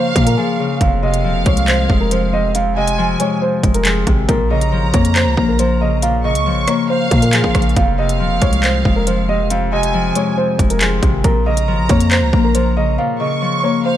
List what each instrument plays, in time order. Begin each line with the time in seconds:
Already playing: harp C#3 F3 A#3, upright piano C5, violin section F5
0.16 808-style bass A#2, harp A#3, kick, closed hi-hat
0.26 upright piano A#4, closed hi-hat
0.37 harp F3, upright piano G#4
0.59 harp C#3
0.81 808-style bass F1, harp F2, upright piano F5, kick, closed hi-hat
1.03 harp C3, upright piano D#5, violin section F5
1.14 closed hi-hat
1.24 808-style bass D#1, harp F3
1.35 808-style bass F1
1.46 808-style bass C2, harp G#3, upright piano C#5, kick, closed hi-hat
1.57 closed hi-hat
1.68 upright piano C5, clap, closed hi-hat
1.90 808-style bass F1, harp G#3, kick
2.00 upright piano A#4
2.11 harp F3, upright piano C5, closed hi-hat
2.33 harp C3, upright piano D#5
2.55 harp F2, upright piano F5, closed hi-hat
2.76 harp C3, upright piano D#5, violin section G#5
2.88 closed hi-hat
2.98 harp F3
3.20 harp G#3, upright piano C#5, closed hi-hat
3.42 upright piano C5
3.63 808-style bass F1, harp G#3, kick, closed hi-hat
3.74 upright piano A#4, closed hi-hat
3.85 harp F3, upright piano G#4, clap, closed hi-hat
4.07 808-style bass G#1, harp C3, kick, closed hi-hat
4.29 808-style bass A#1, harp A#2, upright piano A#4, kick, closed hi-hat
4.50 harp C#3, upright piano D#5, violin section A#5
4.61 closed hi-hat
4.72 808-style bass G#1, harp F3
4.83 808-style bass A#1
4.94 808-style bass F2, harp A#3, upright piano C#5, kick, closed hi-hat
5.05 closed hi-hat
5.16 upright piano C5, clap, closed hi-hat
5.26 808-style bass C#2
5.37 808-style bass A#1, harp A#3, kick
5.48 upright piano A#4
5.59 harp F3, upright piano C5, closed hi-hat
5.81 harp C#3, upright piano D#5
6.02 harp A#2, upright piano F5, closed hi-hat
6.24 harp C#3, upright piano D#5, violin section C#6
6.35 808-style bass C#2, closed hi-hat
6.46 harp F3
6.51 808-style bass A#1
6.68 harp A#3, upright piano C#5, cross-stick, closed hi-hat
6.89 upright piano C5, violin section F5
7.11 808-style bass A#2, harp A#3, kick, closed hi-hat
7.22 upright piano A#4, closed hi-hat
7.33 harp F3, upright piano G#4, clap, closed hi-hat
7.44 808-style bass A#1, kick
7.55 808-style bass A#1, harp C#3, kick, cross-stick, closed hi-hat
7.62 closed hi-hat
7.69 closed hi-hat
7.76 808-style bass F1, harp F2, upright piano F5, kick, closed hi-hat
7.98 harp C3, upright piano D#5, violin section F5
8.09 closed hi-hat
8.20 808-style bass D#1, harp F3
8.31 808-style bass F1
8.42 808-style bass C2, harp G#3, upright piano C#5, kick, closed hi-hat
8.53 closed hi-hat
8.63 upright piano C5, clap, closed hi-hat
8.85 808-style bass F1, harp G#3, kick
8.96 upright piano A#4
9.07 harp F3, upright piano C5, closed hi-hat
9.29 harp C3, upright piano D#5
9.50 harp F2, upright piano F5, closed hi-hat
9.72 harp C3, upright piano D#5, violin section G#5
9.83 closed hi-hat
9.94 harp F3
10.15 harp G#3, upright piano C#5, closed hi-hat
10.37 upright piano C5
10.59 808-style bass F1, harp G#3, kick, closed hi-hat
10.70 upright piano A#4, closed hi-hat
10.81 harp F3, upright piano G#4, clap, closed hi-hat
11.02 808-style bass G#1, harp C3, kick, closed hi-hat
11.24 808-style bass A#1, harp A#2, upright piano A#4, kick, closed hi-hat
11.46 harp C#3, upright piano D#5, violin section A#5
11.57 closed hi-hat
11.68 808-style bass G#1, harp F3
11.79 808-style bass A#1
11.89 808-style bass F2, harp A#3, upright piano C#5, kick, closed hi-hat
12.00 closed hi-hat
12.11 upright piano C5, clap, closed hi-hat
12.22 808-style bass C#2
12.33 808-style bass A#1, harp A#3, kick
12.44 upright piano A#4
12.55 harp F3, upright piano C5, closed hi-hat
12.77 harp C#3, upright piano D#5
12.98 harp A#2, upright piano F5
13.20 harp C#3, upright piano D#5, violin section C#6
13.42 harp F3
13.63 harp A#3, upright piano C#5
13.85 upright piano C5, violin section F5